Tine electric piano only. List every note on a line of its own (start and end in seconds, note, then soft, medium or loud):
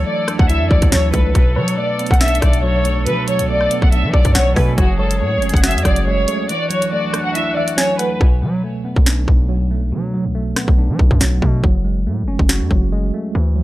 0.00 0.69 E3 medium
0.00 0.90 F#3 medium
0.06 1.12 A3 medium
0.28 1.35 D4 loud
0.50 1.35 E4 medium
0.71 1.35 E3 medium
0.92 1.35 F#3 loud
1.14 1.35 A3 medium
1.35 2.41 B2 loud
1.57 2.62 F#3 medium
1.78 2.84 A3 medium
1.99 3.06 B3 medium
2.21 3.28 D4 medium
2.42 3.05 B2 medium
2.63 3.27 F#3 loud
2.85 3.48 A3 medium
3.06 4.13 B2 medium
3.28 4.35 F#3 medium
3.49 4.56 A3 medium
3.71 4.78 B3 loud
3.92 4.78 D4 medium
4.14 4.78 B2 medium
4.36 4.77 F#3 medium
4.57 4.78 A3 medium
4.78 5.85 F#3 medium
4.99 6.06 G#3 medium
5.21 6.27 A3 medium
5.42 6.49 C#4 loud
5.63 6.49 F#4 medium
5.86 6.50 F#3 medium
6.07 6.50 G#3 medium
6.28 6.49 A3 medium
6.50 7.55 E3 medium
6.70 7.76 F#3 medium
6.92 7.98 A3 medium
7.14 8.21 D4 loud
7.36 8.21 E4 medium
7.56 8.21 E3 medium
7.77 8.20 F#3 loud
7.99 8.21 A3 medium
8.21 9.26 B2 loud
8.42 9.48 F#3 medium
8.64 9.70 A3 medium
8.85 9.92 B3 medium
9.07 10.14 D4 medium
9.28 9.91 B2 medium
9.49 10.13 F#3 medium
9.71 10.34 A3 medium
9.92 10.98 B2 medium
10.14 11.21 F#3 medium
10.35 11.41 A3 medium
10.57 11.64 B3 loud
10.78 11.64 D4 medium
10.99 11.64 B2 medium
11.22 11.62 F#3 loud
11.43 11.64 A3 medium
11.64 12.70 F#3 medium
11.85 12.91 G#3 medium
12.07 13.12 A3 medium
12.28 13.35 C#4 loud
12.49 13.35 F#4 medium
12.71 13.35 F#3 medium
12.92 13.35 G#3 medium
13.14 13.35 A3 medium
13.36 13.63 E3 medium
13.56 13.63 F#3 medium